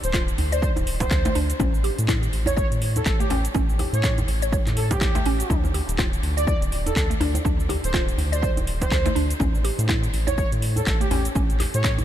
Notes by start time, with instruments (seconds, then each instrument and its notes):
0.03 analog synth bass D1, analog synth lead C5, closed hi-hat, cabasa
0.13 synth arpeggio sound F4, finger snap, kick, clap, cabasa
0.28 closed hi-hat, cabasa
0.38 analog synth bass D2, open hi-hat, djembe tone
0.52 analog synth lead C5, synth arpeggio sound D5, closed hi-hat, cabasa
0.62 synth arpeggio sound D5, kick, cabasa
0.76 analog synth bass D1, closed hi-hat, djembe tone, cabasa
0.87 open hi-hat
1.00 analog synth lead C5, kick, closed hi-hat, djembe slap, cabasa
1.11 analog synth bass D2, finger snap, kick, clap, cabasa
1.25 synth arpeggio sound A3, closed hi-hat, djembe slap, djembe tone, cabasa
1.35 analog synth bass D2, synth arpeggio sound D4, open hi-hat
1.50 closed hi-hat, cabasa
1.60 analog synth bass A1, synth arpeggio sound C#4, kick, djembe slap, djembe tone, cabasa
1.74 cabasa
1.84 synth arpeggio sound G4, open hi-hat
1.99 analog synth bass A2, closed hi-hat, cabasa
2.08 synth arpeggio sound E4, finger snap, kick, clap, djembe tone, cabasa
2.23 closed hi-hat, cabasa
2.33 analog synth bass A1, open hi-hat
2.46 synth arpeggio sound C#5, analog synth lead C#5, closed hi-hat, djembe tone, cabasa
2.57 synth arpeggio sound C#5, analog synth lead C#5, kick, cabasa
2.71 analog synth bass A2, closed hi-hat, cabasa
2.82 open hi-hat
2.96 analog synth lead A4, closed hi-hat, djembe tone, cabasa
3.06 analog synth bass A1, analog synth lead A4, finger snap, kick, clap, cabasa
3.20 synth arpeggio sound A3, analog synth lead G4, closed hi-hat, cabasa
3.30 analog synth bass A1, synth arpeggio sound C#4, analog synth lead G4, open hi-hat, djembe slap, djembe tone
3.45 closed hi-hat, cabasa
3.55 analog synth bass A1, synth arpeggio sound C#4, kick, djembe slap, cabasa
3.70 cabasa
3.79 synth arpeggio sound G4, open hi-hat, djembe tone
3.93 analog synth bass A2, analog synth lead C#5, closed hi-hat, cabasa
4.04 synth arpeggio sound E4, finger snap, kick, clap, cabasa
4.18 closed hi-hat, djembe tone, cabasa
4.28 analog synth bass A1, open hi-hat
4.42 synth arpeggio sound C#5, closed hi-hat, cabasa
4.53 synth arpeggio sound C#5, kick, cabasa
4.67 analog synth bass A2, clap, closed hi-hat, djembe tone, cabasa
4.76 analog synth lead A4, open hi-hat
4.91 analog synth lead G4, kick, closed hi-hat, djembe slap, cabasa
5.01 analog synth bass A1, finger snap, kick, clap, djembe tone, cabasa
5.15 synth arpeggio sound A3, closed hi-hat, djembe slap, cabasa
5.25 analog synth bass A1, synth arpeggio sound C#4, open hi-hat
5.40 closed hi-hat, cabasa
5.50 analog synth bass D2, synth arpeggio sound D4, kick, djembe slap, cabasa
5.64 djembe tone, cabasa
5.74 synth arpeggio sound G4, open hi-hat
5.88 analog synth bass D1, closed hi-hat, cabasa
5.98 synth arpeggio sound F4, finger snap, kick, clap, djembe tone, cabasa
6.13 closed hi-hat, cabasa
6.23 analog synth bass D2, open hi-hat
6.37 analog synth lead D5, synth arpeggio sound D5, closed hi-hat, cabasa
6.47 synth arpeggio sound D5, analog synth lead D5, kick, djembe tone, cabasa
6.61 analog synth bass D1, closed hi-hat, cabasa
6.72 open hi-hat
6.86 analog synth lead A4, closed hi-hat, djembe tone, cabasa
6.96 analog synth bass D2, analog synth lead A4, finger snap, kick, clap, cabasa
7.10 synth arpeggio sound A3, closed hi-hat, cabasa
7.20 analog synth bass D2, synth arpeggio sound D4, open hi-hat, djembe slap
7.35 closed hi-hat, djembe tone, cabasa
7.45 analog synth bass D2, synth arpeggio sound D4, kick, cabasa
7.60 cabasa
7.69 synth arpeggio sound G4, open hi-hat, djembe tone
7.84 analog synth bass D1, analog synth lead C5, closed hi-hat, cabasa
7.94 synth arpeggio sound F4, finger snap, kick, clap, cabasa
8.09 closed hi-hat, cabasa
8.18 analog synth bass D2, open hi-hat, djembe tone
8.32 analog synth lead C5, synth arpeggio sound D5, closed hi-hat, cabasa
8.42 synth arpeggio sound D5, kick, cabasa
8.57 analog synth bass D1, closed hi-hat, djembe tone, cabasa
8.67 open hi-hat
8.81 analog synth lead C5, kick, closed hi-hat, djembe slap, cabasa
8.92 analog synth bass D2, finger snap, kick, clap, cabasa
9.06 synth arpeggio sound A3, closed hi-hat, djembe slap, djembe tone, cabasa
9.15 analog synth bass D2, synth arpeggio sound D4, open hi-hat
9.30 closed hi-hat, cabasa
9.40 analog synth bass A1, synth arpeggio sound C#4, kick, djembe slap, djembe tone, cabasa
9.55 cabasa
9.64 synth arpeggio sound G4, open hi-hat
9.79 analog synth bass A2, closed hi-hat, cabasa
9.89 synth arpeggio sound E4, finger snap, kick, clap, djembe tone, cabasa
10.04 closed hi-hat, cabasa
10.13 analog synth bass A1, open hi-hat
10.27 synth arpeggio sound C#5, analog synth lead C#5, closed hi-hat, djembe tone, cabasa
10.38 synth arpeggio sound C#5, analog synth lead C#5, kick, cabasa
10.52 analog synth bass A2, closed hi-hat, cabasa
10.62 open hi-hat
10.76 analog synth lead A4, closed hi-hat, djembe tone, cabasa
10.87 analog synth bass A1, analog synth lead A4, finger snap, kick, clap, cabasa
11.01 synth arpeggio sound A3, analog synth lead G4, closed hi-hat, cabasa
11.11 analog synth bass A1, synth arpeggio sound C#4, analog synth lead G4, open hi-hat, djembe slap, djembe tone
11.25 closed hi-hat, cabasa
11.36 analog synth bass A1, synth arpeggio sound C#4, kick, cabasa
11.50 closed hi-hat, cabasa
11.60 synth arpeggio sound G4, clap, open hi-hat, djembe tone
11.74 analog synth bass A2, analog synth lead C#5, closed hi-hat, cabasa
11.84 synth arpeggio sound E4, finger snap, kick, clap, cabasa
11.98 closed hi-hat, djembe tone, cabasa